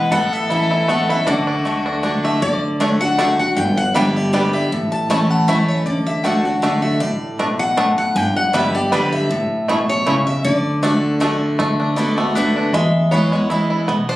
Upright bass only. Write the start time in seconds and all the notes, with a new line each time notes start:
0.11 A1
1.27 D2
2.42 D2
3.57 G1
4.71 A1
5.86 D2
7.00 A1
8.15 G1
9.30 A1
10.45 D2
11.59 D2
12.73 E2
13.88 B1